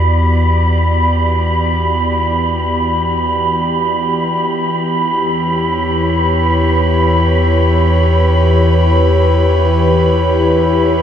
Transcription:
Already playing: synth drone E2, analog synth pad E3 B3 F#4 G4 D5, synth texture B5
4.39 synth drone E2
4.88 analog synth pad E4
5.31 analog synth pad C#5
5.72 analog synth pad B4

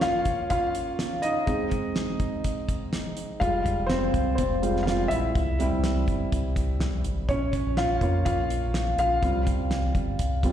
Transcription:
Already playing: grand piano A#3 C#4 F4 C#5
0.01 grand piano F4 F5, snare, closed hi-hat
0.25 kick, closed hi-hat
0.50 grand piano F4 F5, kick, closed hi-hat
0.75 closed hi-hat
0.99 snare, closed hi-hat
1.22 grand piano D#4 D#5, closed hi-hat
1.46 grand piano G#3 C4 D#4, kick, closed hi-hat
1.71 kick, closed hi-hat
1.96 snare, closed hi-hat
2.20 kick, closed hi-hat
2.44 kick, closed hi-hat
2.69 kick, closed hi-hat
2.93 snare, closed hi-hat
3.17 closed hi-hat
3.40 analog synth bass F1, grand piano G3 G#3 F4 F5, kick, closed hi-hat
3.66 kick, closed hi-hat
3.79 analog synth bass F1
3.87 grand piano C4 C5, snare, closed hi-hat
4.14 analog synth bass C2, kick, closed hi-hat
4.35 analog synth bass F1, grand piano C4 C5, kick, closed hi-hat
4.62 grand piano G3 G#3 F4, closed hi-hat
4.77 snare
4.83 grand piano F4 F5
4.87 snare, closed hi-hat
5.08 analog synth bass A#1, grand piano E4 E5, closed hi-hat
5.35 analog synth bass C2, kick, closed hi-hat
5.59 grand piano G3 C4 E4, closed hi-hat
5.72 analog synth bass C2
5.84 snare, closed hi-hat
6.07 analog synth bass G1, kick, closed hi-hat
6.32 analog synth bass C2, kick, closed hi-hat
6.56 kick, closed hi-hat
6.79 analog synth bass C2, snare, closed hi-hat
7.04 analog synth bass G#1, closed hi-hat
7.28 analog synth bass A#1, grand piano C#4 C#5, kick, closed hi-hat
7.53 kick, closed hi-hat
7.66 analog synth bass A#1
7.77 grand piano F4 F5, snare, closed hi-hat
8.01 analog synth bass F2, grand piano A#3 C#4 F4, kick, closed hi-hat
8.25 analog synth bass A#1, grand piano F4 F5, kick, closed hi-hat
8.50 closed hi-hat
8.74 snare, closed hi-hat
8.98 analog synth bass A#1, grand piano F4 F5, closed hi-hat
9.22 analog synth bass C2, grand piano G3 C4 F4, kick, closed hi-hat
9.47 kick, closed hi-hat
9.60 analog synth bass C2
9.71 snare, closed hi-hat
9.95 analog synth bass G1, kick, closed hi-hat
10.19 analog synth bass C2, kick, closed hi-hat
10.43 grand piano G3 C4 F4, kick, closed hi-hat

